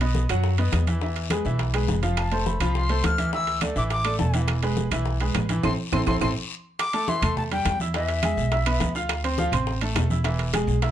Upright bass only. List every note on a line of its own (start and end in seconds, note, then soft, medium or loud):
0.00 0.24 B1 medium
0.29 0.70 F#2 medium
0.73 1.40 E2 medium
1.45 1.85 B1 medium
1.88 2.55 F1 medium
2.60 3.01 C2 medium
3.04 3.71 D2 medium
3.76 4.16 A1 medium
4.19 4.86 E1 medium
4.91 5.32 B1 medium
5.35 5.62 A1 medium
5.63 5.74 A1 loud
5.92 6.03 A1 medium
6.07 6.18 A1 medium
6.21 6.32 A1 loud
7.22 7.62 E2 medium
7.65 8.32 E2 medium
8.37 8.78 B1 medium
8.80 9.47 D2 medium
9.52 9.93 A1 medium
9.95 10.62 E1 medium
10.67 10.91 B1 medium